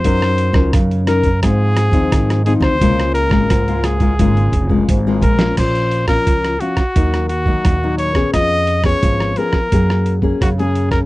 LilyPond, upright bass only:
\new Staff \with { instrumentName = "Upright bass" } { \clef bass \time 4/4 \key des \major \tempo 4 = 87 ges,8. des,16 ges,4 aes,8. ees,16 aes,8. d,16 | des,8. aes,,16 des,4 aes,,8 f,,8 aes,,8 bes,,8 | \key bes \minor bes,,4 des,8 r8 ees,4 ees,4 | f,4 aes,,8 r8 ges,4 ges,4 | }